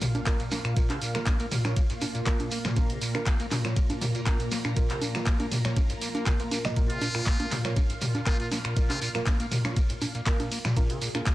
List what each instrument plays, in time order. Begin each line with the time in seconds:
Already playing: string machine A#2 A#3 F4 F5, impact
0.01 acid bass A#2, open hi-hat, mid tom, shekere
0.15 acid bass A#2, closed hi-hat, high conga, shekere
0.26 synth stab A#3 F4 A#4, acid bass A#3, kick, clap, closed hi-hat, ride, shekere
0.39 acid bass A#2, closed hi-hat, shekere
0.51 acid bass A#3, snare, open hi-hat, high conga, shekere
0.65 acid bass A#2, finger snap, closed hi-hat, shekere
0.76 acid bass A#2, synth stab A#3 F4 A#4, kick, closed hi-hat, ride, shekere
0.90 acid bass C#3, clap, closed hi-hat, high conga
1.01 acid bass A#2, open hi-hat, shekere
1.15 acid bass F3, synth stab A#3 F4 A#4, finger snap, snare, closed hi-hat, shekere
1.26 acid bass A#3, kick, clap, closed hi-hat, ride, high conga, shekere
1.39 acid bass A#3, closed hi-hat, shekere
1.51 acid bass A#2, open hi-hat, mid tom, shekere
1.65 acid bass A#2, synth stab A#3 F4 C#5, finger snap, snare, closed hi-hat, high conga, shekere
1.77 acid bass A#3, kick, closed hi-hat, ride, shekere
1.90 acid bass G#2, closed hi-hat, shekere
2.01 acid bass A#2, open hi-hat, high conga, shekere
2.15 acid bass A#2, closed hi-hat, shekere
2.26 synth stab A#3 F4 A#4, acid bass A#3, kick, clap, closed hi-hat, ride, shekere
2.39 acid bass A#2, closed hi-hat, high conga, shekere
2.51 acid bass A#3, open hi-hat, shekere
2.65 acid bass A#2, finger snap, snare, mid tom, shekere
2.76 acid bass A#2, synth stab A#3 F4 A#4, string machine A#5, kick, closed hi-hat, ride, high conga, shekere
2.90 acid bass C#3, closed hi-hat
3.02 acid bass A#2, open hi-hat, shekere
3.15 acid bass F3, synth stab A#3 F4 A#4, finger snap, closed hi-hat, high conga, shekere
3.26 acid bass A#3, kick, clap, closed hi-hat, ride, shekere
3.40 acid bass A#3, closed hi-hat, shekere
3.51 acid bass A#2, clap, open hi-hat, mid tom, high conga, shekere
3.65 acid bass A#2, synth stab A#3 F4 C#5, finger snap, snare, closed hi-hat, shekere
3.76 acid bass A#3, kick, closed hi-hat, ride, shekere
3.90 acid bass G#2, closed hi-hat, high conga, shekere
4.01 acid bass A#2, open hi-hat, mid tom, shekere
4.15 acid bass A#2, closed hi-hat, shekere
4.26 synth stab A#3 F4 A#4, acid bass A#3, kick, clap, closed hi-hat, ride, high conga, shekere
4.40 acid bass A#2, closed hi-hat, shekere
4.51 acid bass A#3, snare, open hi-hat, shekere
4.65 acid bass A#2, finger snap, closed hi-hat, high conga, shekere
4.76 acid bass A#2, synth stab A#3 F4 A#4, kick, closed hi-hat, ride, shekere
4.90 acid bass C#3, clap, closed hi-hat
5.02 acid bass A#2, open hi-hat, high conga, shekere
5.15 acid bass F3, synth stab A#3 F4 A#4, finger snap, snare, closed hi-hat, shekere
5.25 acid bass A#3, kick, clap, closed hi-hat, ride, shekere
5.40 acid bass A#3, closed hi-hat, high conga, shekere
5.51 acid bass A#2, open hi-hat, mid tom, shekere
5.65 acid bass A#2, synth stab A#3 F4 C#5, finger snap, snare, closed hi-hat, shekere
5.76 acid bass A#3, kick, closed hi-hat, ride, high conga, shekere
5.89 acid bass G#2, closed hi-hat, shekere
6.01 acid bass A#3, open hi-hat, shekere
6.15 acid bass A#3, closed hi-hat, high conga, shekere
6.26 acid bass C#3, synth stab A#3 F4 A#4, kick, clap, closed hi-hat, ride, shekere
6.40 acid bass A#3, synth stab A#3 F4 A#4, closed hi-hat, shekere
6.51 acid bass A#3, open hi-hat, high conga, shekere
6.65 acid bass A#2, synth stab A#3 F4 D#5, finger snap, snare, closed hi-hat, mid tom, shekere
6.76 acid bass A#2, synth stab A#3 F4 A#4, string machine F5, kick, closed hi-hat, ride, shekere
6.90 acid bass C#3, muted trumpet F4, closed hi-hat
7.01 acid bass A#2, open hi-hat, high conga, shekere
7.15 acid bass A#2, synth stab A#3 F4 A#4, finger snap, closed hi-hat, shekere
7.26 acid bass A#3, kick, clap, closed hi-hat, ride, shekere
7.39 acid bass A#3, closed hi-hat, high conga, shekere
7.51 acid bass A#2, clap, open hi-hat, mid tom, shekere
7.65 acid bass A#2, synth stab A#3 F4 C#5, finger snap, snare, closed hi-hat, shekere
7.76 acid bass A#3, kick, closed hi-hat, ride, high conga, shekere
7.90 acid bass G#2, closed hi-hat, shekere
8.01 acid bass A#2, open hi-hat, mid tom, shekere
8.15 acid bass A#2, closed hi-hat, high conga, shekere
8.26 synth stab A#3 F4 A#4, acid bass A#3, muted trumpet F4, kick, clap, closed hi-hat, ride, shekere
8.40 acid bass A#2, muted trumpet F4, closed hi-hat, shekere
8.52 acid bass A#3, snare, open hi-hat, high conga, shekere
8.64 acid bass A#2, finger snap, closed hi-hat, shekere
8.76 acid bass A#2, synth stab A#3 F4 A#4, kick, closed hi-hat, ride, shekere
8.90 acid bass C#3, muted trumpet F4, clap, closed hi-hat, high conga
9.01 acid bass A#2, muted trumpet F4, open hi-hat, shekere
9.15 acid bass A#2, synth stab A#3 F4 A#4, finger snap, snare, closed hi-hat, shekere
9.26 acid bass A#3, kick, clap, closed hi-hat, ride, high conga, shekere
9.40 acid bass A#3, closed hi-hat, shekere
9.52 acid bass A#2, open hi-hat, mid tom, shekere
9.65 acid bass A#2, synth stab A#3 F4 C#5, finger snap, snare, closed hi-hat, high conga, shekere
9.76 acid bass A#3, kick, closed hi-hat, ride, shekere
9.89 acid bass G#2, closed hi-hat, shekere
10.02 acid bass A#2, open hi-hat, high conga, shekere
10.14 acid bass A#2, closed hi-hat, shekere
10.26 synth stab A#3 F4 A#4, acid bass A#3, kick, clap, closed hi-hat, ride, shekere
10.40 acid bass A#2, closed hi-hat, high conga, shekere
10.52 acid bass A#3, open hi-hat, shekere
10.65 acid bass A#2, finger snap, snare, closed hi-hat, mid tom, shekere
10.76 acid bass A#2, synth stab A#3 F4 A#4, string machine G#4, kick, closed hi-hat, ride, high conga, shekere
10.90 acid bass C#3, closed hi-hat
11.02 acid bass A#2, open hi-hat, shekere
11.15 acid bass A#2, synth stab A#3 F4 A#4, finger snap, closed hi-hat, high conga, shekere
11.26 acid bass A#3, kick, clap, closed hi-hat, ride, shekere